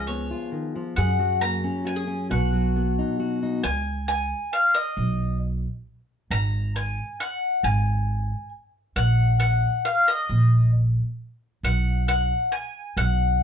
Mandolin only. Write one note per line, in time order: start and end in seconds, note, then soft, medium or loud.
0.07 0.49 C#5 medium
0.96 1.41 F#5 medium
1.41 1.86 A#5 medium
1.87 2.28 G#5 medium
2.31 3.38 F#5 medium
3.64 4.05 G#5 loud
4.08 4.53 G#5 medium
4.53 4.76 F5 medium
4.74 5.37 D#5 medium
6.31 6.75 A#5 loud
6.76 7.20 G#5 medium
7.20 7.64 F#5 medium
7.64 8.49 G#5 medium
8.96 9.39 F#5 loud
9.40 9.85 F#5 medium
9.85 10.08 F5 medium
10.08 10.70 D#5 medium
11.65 12.07 F#5 medium
12.08 12.52 F#5 medium
12.52 12.97 G#5 medium
12.97 13.43 F#5 medium